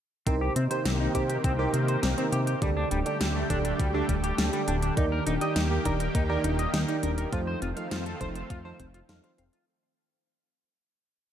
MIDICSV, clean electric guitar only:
0, 0, Header, 1, 2, 480
1, 0, Start_track
1, 0, Tempo, 588235
1, 217, Time_signature, 4, 2, 24, 8
1, 9240, End_track
2, 0, Start_track
2, 0, Title_t, "Clean electric guitar"
2, 0, Program_c, 0, 27
2, 217, Note_on_c, 0, 60, 94
2, 277, Note_off_c, 0, 60, 0
2, 337, Note_on_c, 0, 67, 98
2, 427, Note_off_c, 0, 67, 0
2, 457, Note_on_c, 0, 60, 91
2, 517, Note_off_c, 0, 60, 0
2, 576, Note_on_c, 0, 72, 73
2, 667, Note_off_c, 0, 72, 0
2, 697, Note_on_c, 0, 60, 80
2, 733, Note_off_c, 0, 60, 0
2, 817, Note_on_c, 0, 63, 73
2, 907, Note_off_c, 0, 63, 0
2, 937, Note_on_c, 0, 67, 93
2, 997, Note_off_c, 0, 67, 0
2, 1057, Note_on_c, 0, 67, 74
2, 1117, Note_off_c, 0, 67, 0
2, 1178, Note_on_c, 0, 60, 99
2, 1238, Note_off_c, 0, 60, 0
2, 1298, Note_on_c, 0, 67, 97
2, 1387, Note_off_c, 0, 67, 0
2, 1418, Note_on_c, 0, 60, 72
2, 1454, Note_off_c, 0, 60, 0
2, 1538, Note_on_c, 0, 72, 75
2, 1628, Note_off_c, 0, 72, 0
2, 1657, Note_on_c, 0, 60, 79
2, 1693, Note_off_c, 0, 60, 0
2, 1777, Note_on_c, 0, 60, 99
2, 1837, Note_off_c, 0, 60, 0
2, 1897, Note_on_c, 0, 67, 96
2, 1957, Note_off_c, 0, 67, 0
2, 2018, Note_on_c, 0, 67, 73
2, 2108, Note_off_c, 0, 67, 0
2, 2138, Note_on_c, 0, 55, 96
2, 2198, Note_off_c, 0, 55, 0
2, 2257, Note_on_c, 0, 62, 100
2, 2347, Note_off_c, 0, 62, 0
2, 2378, Note_on_c, 0, 55, 94
2, 2438, Note_off_c, 0, 55, 0
2, 2497, Note_on_c, 0, 67, 73
2, 2587, Note_off_c, 0, 67, 0
2, 2617, Note_on_c, 0, 55, 80
2, 2653, Note_off_c, 0, 55, 0
2, 2738, Note_on_c, 0, 57, 71
2, 2828, Note_off_c, 0, 57, 0
2, 2857, Note_on_c, 0, 62, 94
2, 2917, Note_off_c, 0, 62, 0
2, 2977, Note_on_c, 0, 62, 70
2, 3037, Note_off_c, 0, 62, 0
2, 3097, Note_on_c, 0, 55, 100
2, 3157, Note_off_c, 0, 55, 0
2, 3218, Note_on_c, 0, 62, 96
2, 3308, Note_off_c, 0, 62, 0
2, 3338, Note_on_c, 0, 55, 75
2, 3374, Note_off_c, 0, 55, 0
2, 3459, Note_on_c, 0, 67, 77
2, 3548, Note_off_c, 0, 67, 0
2, 3578, Note_on_c, 0, 55, 80
2, 3614, Note_off_c, 0, 55, 0
2, 3698, Note_on_c, 0, 55, 100
2, 3758, Note_off_c, 0, 55, 0
2, 3818, Note_on_c, 0, 62, 98
2, 3878, Note_off_c, 0, 62, 0
2, 3938, Note_on_c, 0, 62, 75
2, 4028, Note_off_c, 0, 62, 0
2, 4058, Note_on_c, 0, 63, 95
2, 4118, Note_off_c, 0, 63, 0
2, 4178, Note_on_c, 0, 70, 98
2, 4268, Note_off_c, 0, 70, 0
2, 4298, Note_on_c, 0, 63, 97
2, 4358, Note_off_c, 0, 63, 0
2, 4418, Note_on_c, 0, 75, 77
2, 4508, Note_off_c, 0, 75, 0
2, 4537, Note_on_c, 0, 63, 79
2, 4573, Note_off_c, 0, 63, 0
2, 4658, Note_on_c, 0, 67, 72
2, 4748, Note_off_c, 0, 67, 0
2, 4777, Note_on_c, 0, 70, 96
2, 4837, Note_off_c, 0, 70, 0
2, 4898, Note_on_c, 0, 70, 70
2, 4958, Note_off_c, 0, 70, 0
2, 5018, Note_on_c, 0, 63, 101
2, 5078, Note_off_c, 0, 63, 0
2, 5138, Note_on_c, 0, 70, 99
2, 5228, Note_off_c, 0, 70, 0
2, 5257, Note_on_c, 0, 63, 75
2, 5293, Note_off_c, 0, 63, 0
2, 5378, Note_on_c, 0, 75, 77
2, 5468, Note_off_c, 0, 75, 0
2, 5497, Note_on_c, 0, 63, 80
2, 5533, Note_off_c, 0, 63, 0
2, 5617, Note_on_c, 0, 63, 101
2, 5677, Note_off_c, 0, 63, 0
2, 5737, Note_on_c, 0, 70, 96
2, 5797, Note_off_c, 0, 70, 0
2, 5858, Note_on_c, 0, 70, 75
2, 5948, Note_off_c, 0, 70, 0
2, 5978, Note_on_c, 0, 65, 97
2, 6038, Note_off_c, 0, 65, 0
2, 6098, Note_on_c, 0, 72, 101
2, 6188, Note_off_c, 0, 72, 0
2, 6218, Note_on_c, 0, 65, 98
2, 6278, Note_off_c, 0, 65, 0
2, 6338, Note_on_c, 0, 77, 74
2, 6428, Note_off_c, 0, 77, 0
2, 6458, Note_on_c, 0, 65, 81
2, 6494, Note_off_c, 0, 65, 0
2, 6578, Note_on_c, 0, 69, 70
2, 6668, Note_off_c, 0, 69, 0
2, 6698, Note_on_c, 0, 72, 100
2, 6758, Note_off_c, 0, 72, 0
2, 6818, Note_on_c, 0, 72, 73
2, 6878, Note_off_c, 0, 72, 0
2, 6938, Note_on_c, 0, 65, 101
2, 6998, Note_off_c, 0, 65, 0
2, 7058, Note_on_c, 0, 72, 98
2, 7148, Note_off_c, 0, 72, 0
2, 7178, Note_on_c, 0, 72, 75
2, 7214, Note_off_c, 0, 72, 0
2, 7297, Note_on_c, 0, 65, 104
2, 7333, Note_off_c, 0, 65, 0
2, 7417, Note_on_c, 0, 77, 101
2, 7507, Note_off_c, 0, 77, 0
2, 7536, Note_on_c, 0, 77, 74
2, 7597, Note_off_c, 0, 77, 0
2, 7657, Note_on_c, 0, 77, 72
2, 7693, Note_off_c, 0, 77, 0
2, 7778, Note_on_c, 0, 65, 76
2, 7867, Note_off_c, 0, 65, 0
2, 9240, End_track
0, 0, End_of_file